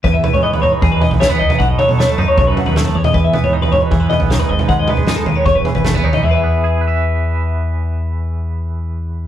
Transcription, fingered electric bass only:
\new Staff \with { instrumentName = "Fingered electric bass" } { \clef bass \time 4/4 \key e \major \tempo 4 = 155 e,8 r16 gis,8 r16 gis,16 r16 e,8. b,,8 r16 cis,16 r16 | b,,8 r16 b,8 r16 fis,16 r16 b,,8 r16 dis,8. e,8 | e,8 r16 gis,8 r16 gis,16 r16 e,8. b,,8 r16 gis,,16 r16 | dis,8 r16 gis,8 r16 dis,16 r16 e,,8 r16 gis,,8. dis,8 |
e,1~ | e,1 | }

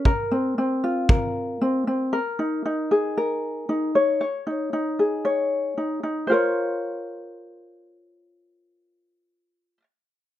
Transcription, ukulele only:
\new Staff \with { instrumentName = "Ukulele" } { \time 4/4 \key bes \minor \tempo 4 = 115 bes'8 c'8 c'8 f'8 bes'4 c'8 c'8 | bes'8 ees'8 ees'8 aes'8 bes'4 ees'8 des''8 | des''8 ees'8 ees'8 aes'8 des''4 ees'8 ees'8 | <f' bes' c'' des''>1~ |
<f' bes' c'' des''>1 | }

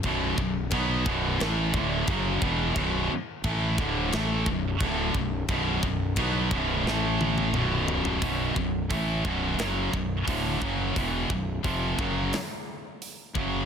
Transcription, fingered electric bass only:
\new Staff \with { instrumentName = "Fingered electric bass" } { \clef bass \time 4/4 \key b \minor \tempo 4 = 88 b,,,8 b,,,8 b,,8 b,,,8 a,,8 d,,8 fis,,8 e,,8 | b,,,8 r8 a,,8 d,,8 a,,8 b,,,8 d,,8 b,,,8 | b,,,8 b,,,8 b,,8 b,,,8 a,,4 b,,,4 | b,,,8 b,,,8 a,,8 b,,,8 fis,,8 b,,,8 d,,8 fis,,8 |
e,,8 b,,,8 eis,,8 fis,,8 r4. fis,,8 | }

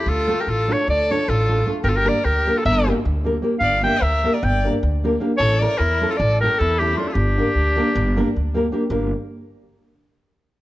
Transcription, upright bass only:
\new Staff \with { instrumentName = "Upright bass" } { \clef bass \time 9/8 \tempo 4. = 102 d,4 a,,4 d,4 a,,4. | g,,4 d,4 g,,4 d,4. | g,,4 d,4 g,,4 d,4. | a,,4 e,4 a,,4 e,4. |
g,,4 d,4 g,,4 d,4. | g,,8 r1 | }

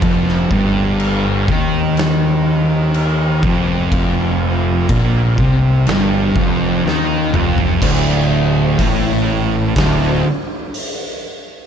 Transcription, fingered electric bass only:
\new Staff \with { instrumentName = "Fingered electric bass" } { \clef bass \time 4/4 \key d \phrygian \tempo 4 = 62 f,,8 g,,4 ees,2 f,,8~ | f,,4 bes,,8 c,8 g,,8 f,,8 ees,8 f,,8 | d,,4 a,,4 d,,8 r4. | }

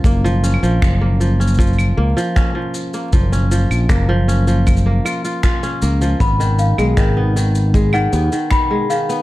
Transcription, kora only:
\new Staff \with { instrumentName = "Kora" } { \time 4/4 \key fis \major \tempo 4 = 78 ais16 eis16 cis'16 eis8 ais16 eis16 cis'16 eis16 r16 ais16 eis16 cis'16 eis8 ais16 | eis16 cis'16 eis16 r16 ais16 eis16 cis'16 eis8 ais16 eis'16 eis'16 eis'16 cis'16 ais16 eis16 | b16 dis8 gis16 dis16 b16 dis16 r16 gis16 dis16 b16 dis8 gis16 dis16 b16 | }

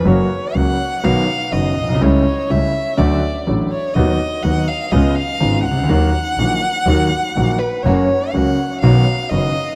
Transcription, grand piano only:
\new Staff \with { instrumentName = "Grand piano" } { \clef bass \time 4/4 \key fis \major \tempo 4 = 123 <fis, cis fis ais fis'>8 r8 <cis, cis fis ais fis'>8 r8 <b,, b, dis fis b fis'>8 r8 <fis,, fis, dis fis b fis'>8 r32 ais,,32 b,,32 bis,,32 | <cis, cis g a e'>8 r8 <cis, cis g a e'>8 r8 <d, d fis a fis'>8 r8 <a,, a, d fis a fis'>8 r8 | <dis, dis fis b fis'>8 r8 <dis, dis fis b fis'>8 r8 <cis, cis gis b eis'>8 r8 <gis,, gis, cis gis b eis'>8 r32 bis,,32 cis,32 d,32 | <dis, dis fis ais fis'>8 r8 <ais,, ais, dis fis ais fis'>8 r8 <dis, dis fis ais fis'>8 r8 <ais,, ais, dis fis ais fis'>8 r8 |
<fis, cis fis ais fis'>8 r8 <cis, cis fis ais fis'>8 r8 <b,, b, dis fis b fis'>8 r8 <fis,, fis, dis fis b fis'>8 r8 | }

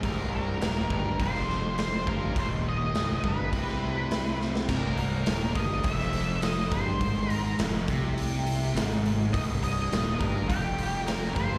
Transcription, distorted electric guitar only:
\new Staff \with { instrumentName = "Distorted electric guitar" } { \clef bass \time 4/4 \key f \major \tempo 4 = 103 c,4 ees,8 g,8 f,4. g,8 | ees,4 c,8 g,8 c2 | c,4 dis,8 g,8 f,4. g,8 | aes,4 f,8 c4. aes,4 |
c,4 ees,8 g,8 f,4. g,8 | }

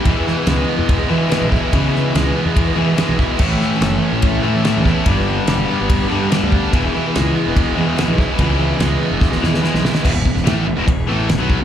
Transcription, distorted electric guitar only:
\new Staff \with { instrumentName = "Distorted electric guitar" } { \clef bass \time 4/4 \key e \major \tempo 4 = 144 e8 e8 gis8 b8 gis8 e8 gis8 e'8 | e8 e8 gis8 b8 gis8 e8 gis8 e'8 | a,8 e8 a8 cis'8 a8 e8 a8 e'8 | g,8 d8 g8 b8 g8 d8 g8 d'8 |
e8 e8 gis8 b8 gis8 e8 gis8 e'8 | e8 e8 gis8 b8 gis8 e8 gis8 e'8 | <e, b,>16 <e, b,>16 <e, b,>16 <e, b,>16 <a, e a>8 <e, b,>16 <e, b,>16 <e, b,>8 <a, e a>8 <e, b,>16 <b, fis b>8 <e, b,>16 | }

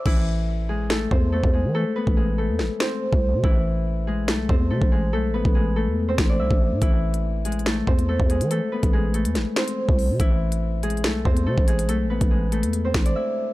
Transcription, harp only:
\new Staff \with { instrumentName = "Harp" } { \time 4/4 \key a \minor \tempo 4 = 142 <e e'>4. <gis gis'>8 <a a'>8 <c' c''>8 <a a'>8 <gis gis'>8 | <a a'>8 <b b'>8 <gis gis'>8 <a a'>4 <c' c''>4. | <e e'>4. <gis gis'>8 <a a'>8 <c' c''>8 <a a'>8 <gis gis'>8 | <a a'>8 <b b'>8 <gis gis'>8 <a a'>8. <c' c''>8 <d' d''>16 <e' e''>8 r8 |
<e e'>4. <gis gis'>8 <a a'>8 <c' c''>8 <a a'>8 <gis gis'>8 | <a a'>8 <b b'>8 <gis gis'>8 <a a'>4 <c' c''>4. | <e e'>4. <gis gis'>8 <a a'>8 <c' c''>8 <a a'>8 <gis gis'>8 | <a a'>8 <b b'>8 <gis gis'>8 <a a'>8. <c' c''>8 <d' d''>16 <e' e''>8 r8 | }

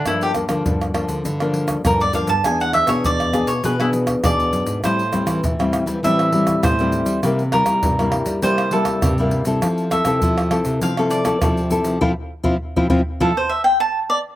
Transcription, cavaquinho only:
\new Staff \with { instrumentName = "Cavaquinho" } { \time 4/4 \key f \major \tempo 4 = 100 e'16 g'16 r2 r8 bes'16 d''16 f''16 a''16 | gis''16 ges''16 e''16 des''16 d''8. des''16 b'16 e'16 r8 d''4 | c''4 r4 e''4 c''4 | r8 bes'4. c''8 a'4. |
r8 e''4. f''8 d''4. | r2 a'16 c''16 e''16 g''16 a''8 d''8 | }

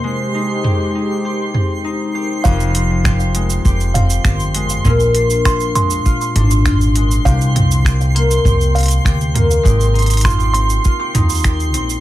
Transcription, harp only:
\new Staff \with { instrumentName = "Harp" } { \time 4/4 \key f \dorian \tempo 4 = 100 aes8 ees'8 g'8 ees'8 g'8 c'8 ees'8 g'8 | <f, g'>8 c'8 g'8 aes8 g'8 c'8 g'8 aes8 | <bes, f'>8 d'8 f'8 aes8 f'8 d'8 f'8 aes8 | <c g'>8 c'8 g'8 bes8 g'8 c'8 g'8 bes8 |
<aes g'>8 ees'8 f'16 g'16 c'8 f'16 g'16 ees'8 g'8 c'8 | }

